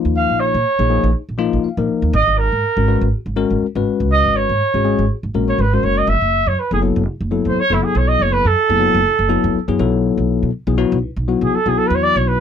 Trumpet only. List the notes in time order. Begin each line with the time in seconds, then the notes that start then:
0.17 F5
0.40 C#5
2.15 D#5
2.38 A#4
4.12 D#5
4.36 C#5
5.49 C#5
5.61 B4
5.74 C5
5.84 C#5
5.98 D#5
6.09 E5
6.48 C#5
6.60 B4
6.73 G#4
7.48 C5
7.60 C#5
7.74 E4
7.83 G#4
7.98 C#5
8.08 D#5
8.22 C#5
8.33 B4
8.47 A4
11.44 G#4
11.55 A4
11.68 G#4
11.78 A4
11.87 B4
11.95 C#5
12.03 D5
12.17 C#5
12.28 B4